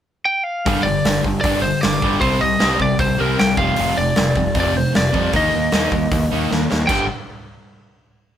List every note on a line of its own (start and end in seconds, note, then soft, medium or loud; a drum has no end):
0.25 0.44 G5 loud
0.44 0.85 F5 loud
0.66 0.80 G1 medium
0.66 0.85 G2 medium
0.66 0.85 D3 medium
0.66 0.85 G3 medium
0.66 kick loud
0.66 open hi-hat medium
0.83 0.99 G1 medium
0.83 1.04 G2 medium
0.83 1.04 D3 medium
0.83 1.20 D5 loud
1.05 1.19 G1 medium
1.05 1.24 G2 medium
1.05 1.24 D3 medium
1.05 snare loud
1.05 open hi-hat medium
1.24 1.38 G1 medium
1.24 1.43 G2 medium
1.24 1.44 D3 medium
1.24 kick medium
1.41 1.71 G1 medium
1.41 1.61 D5 loud
1.41 kick loud
1.41 open hi-hat medium
1.45 1.63 G2 medium
1.45 1.63 D3 medium
1.45 1.64 G3 loud
1.62 1.81 G2 medium
1.62 1.82 D3 medium
1.62 1.81 C5 medium
1.81 1.97 G1 medium
1.81 2.01 G2 medium
1.81 2.01 D3 medium
1.81 2.20 D5 medium
1.81 snare loud
1.81 open hi-hat medium
2.02 2.16 G1 medium
2.02 2.21 G2 medium
2.02 2.21 D3 loud
2.02 2.22 G3 loud
2.02 kick medium
2.21 2.35 C2 medium
2.21 2.40 C3 medium
2.21 2.40 G3 loud
2.21 2.41 C4 medium
2.21 2.41 C5 medium
2.21 kick loud
2.21 open hi-hat medium
2.41 2.56 C2 medium
2.41 2.58 C3 medium
2.41 2.59 G3 medium
2.41 2.81 D#5 medium
2.59 2.76 C2 medium
2.59 2.78 C3 medium
2.59 2.79 G3 loud
2.59 2.79 C4 loud
2.59 snare loud
2.59 open hi-hat medium
2.80 2.94 C2 medium
2.80 2.97 C3 medium
2.80 2.98 G3 medium
2.80 3.00 D5 medium
2.80 kick medium
2.99 3.13 C2 medium
2.99 3.17 C3 medium
2.99 3.17 G3 medium
2.99 3.20 C5 medium
2.99 kick loud
2.99 open hi-hat medium
3.18 3.34 C2 medium
3.18 3.37 C3 medium
3.18 3.37 G3 medium
3.18 3.38 C4 medium
3.18 3.40 A#4 medium
3.39 3.54 C2 medium
3.39 3.57 C3 medium
3.39 3.57 G3 medium
3.39 3.57 G5 loud
3.39 snare loud
3.39 open hi-hat medium
3.57 3.71 F1 medium
3.57 3.76 F2 medium
3.57 3.77 C3 medium
3.57 3.77 F3 medium
3.57 3.98 F5 loud
3.57 kick loud
3.76 3.92 F1 medium
3.76 3.96 F2 medium
3.76 3.96 C3 loud
3.76 3.97 F3 loud
3.76 open hi-hat medium
3.97 4.11 F1 medium
3.97 4.15 F2 medium
3.97 4.15 C3 medium
3.97 4.57 D5 medium
4.16 4.31 F1 medium
4.16 4.34 F2 medium
4.16 4.35 C3 medium
4.16 snare loud
4.16 open hi-hat medium
4.36 4.49 F1 medium
4.36 4.54 F2 medium
4.36 4.54 C3 medium
4.36 kick medium
4.55 4.83 F1 medium
4.55 4.74 F2 medium
4.55 4.74 C3 medium
4.55 4.75 F3 loud
4.55 kick loud
4.55 open hi-hat medium
4.60 4.77 D5 medium
4.75 4.93 F2 medium
4.75 4.93 C3 medium
4.75 4.96 C5 medium
4.95 5.09 F1 medium
4.95 5.12 F2 medium
4.95 5.13 C3 medium
4.95 5.32 D5 medium
4.95 snare loud
4.95 open hi-hat medium
5.14 5.32 F2 medium
5.14 5.28 F2 medium
5.14 5.33 C3 loud
5.14 5.33 F3 loud
5.14 kick medium
5.33 5.48 D#2 medium
5.33 5.52 D#3 medium
5.33 5.52 A#3 medium
5.33 5.53 D#4 loud
5.33 6.67 D#5 medium
5.33 kick loud
5.33 open hi-hat medium
5.55 5.68 D#2 medium
5.55 5.71 D#3 medium
5.55 5.72 A#3 medium
5.72 5.87 D#2 medium
5.72 5.91 D#3 medium
5.72 5.92 A#3 medium
5.72 5.92 D#4 loud
5.72 snare loud
5.72 open hi-hat medium
5.92 6.05 D#2 medium
5.92 6.10 D#3 medium
5.92 6.10 A#3 medium
5.92 kick medium
6.12 6.25 D#2 medium
6.12 6.29 D#3 medium
6.12 6.29 A#3 medium
6.12 kick loud
6.12 open hi-hat medium
6.32 6.46 D#2 medium
6.32 6.50 D#3 medium
6.32 6.49 A#3 medium
6.32 6.50 D#4 medium
6.50 6.65 D#2 medium
6.50 6.68 D#3 medium
6.50 6.68 A#3 medium
6.50 snare medium
6.70 6.85 D#2 medium
6.70 6.87 D#3 medium
6.70 6.87 A#3 medium
6.70 snare medium
6.87 7.07 G1 medium
6.87 7.05 G2 loud
6.87 7.05 D3 medium
6.87 7.06 G5 medium
6.87 kick loud
6.87 crash medium
6.91 7.06 G3 loud